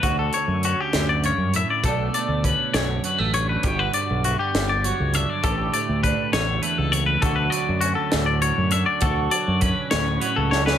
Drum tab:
HH |x-x-x-x-x-x-|x-x-x-x-x-x-|x-x-x-x-x-x-|x-x-x-x-x-x-|
SD |------o-----|------o-----|------o-----|------o-----|
BD |o-----------|o---o-------|o-----------|o---o-------|

HH |x-x-x-x-x-x-|x-x-x-x-x---|
SD |------o-----|------o---oo|
BD |o-----------|o---o-------|